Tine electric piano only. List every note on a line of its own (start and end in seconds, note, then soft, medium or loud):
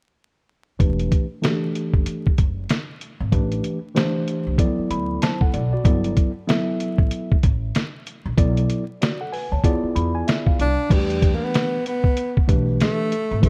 0.79 1.25 E3 medium
0.79 1.25 A3 medium
0.79 1.25 D4 medium
0.79 1.25 G4 medium
0.79 1.26 B4 medium
1.42 2.30 E3 medium
1.42 2.30 A3 medium
1.42 2.31 D4 medium
1.42 1.51 F#4 medium
1.42 2.31 A4 medium
1.49 2.34 G4 medium
3.32 3.78 E3 medium
3.32 3.78 A3 medium
3.32 3.78 D4 medium
3.32 3.78 G4 medium
3.32 3.78 B4 medium
3.95 4.58 E3 medium
3.95 4.59 A3 medium
3.95 4.59 D4 medium
3.95 4.59 G4 medium
3.95 4.59 C5 medium
4.58 4.67 F3 medium
4.58 5.61 B3 medium
4.58 5.61 E4 medium
4.58 5.22 A4 medium
4.58 5.23 D5 medium
4.65 5.64 F#3 medium
4.91 5.20 B5 medium
5.22 5.41 C5 soft
5.22 5.40 A5 medium
5.41 5.72 A4 medium
5.41 5.72 F#5 medium
5.54 5.72 D5 medium
5.73 6.03 F#4 soft
5.73 5.84 D5 medium
5.84 6.30 F#3 medium
5.84 6.30 B3 medium
5.84 6.31 E4 medium
5.84 6.31 A4 medium
5.84 6.31 D5 medium
6.47 7.36 F#3 medium
6.47 7.36 B3 medium
6.47 7.36 E4 medium
6.47 7.36 A4 medium
6.47 7.36 E5 medium
8.37 8.83 F#3 medium
8.37 8.83 B3 medium
8.37 8.83 E4 medium
8.37 8.83 A4 medium
8.37 8.84 D5 medium
9.02 9.20 F#4 soft
9.02 9.20 D5 medium
9.21 9.32 A4 medium
9.21 9.32 F#5 medium
9.32 9.51 B4 medium
9.32 9.51 G#5 medium
9.52 9.82 C#5 soft
9.52 9.82 A5 medium
9.64 10.67 B3 medium
9.64 10.67 E4 medium
9.64 10.67 F4 medium
9.64 10.67 G#4 medium
9.64 10.67 D5 medium
9.96 10.14 B5 medium
10.15 10.26 G#5 medium
10.27 10.46 E5 medium
10.47 10.88 F5 medium
10.89 11.78 E3 medium
10.89 11.78 A3 medium
10.89 11.78 D4 medium
10.89 10.98 F#4 soft
10.89 11.78 B4 medium
10.97 11.81 G4 medium
12.47 13.12 E3 medium
12.47 13.12 A3 medium
12.47 13.13 D4 medium
12.47 13.13 G4 medium
12.47 13.13 B4 medium
13.42 13.49 E3 medium
13.42 13.49 A3 medium
13.42 13.49 D4 medium
13.42 13.49 G4 medium
13.42 13.49 B4 medium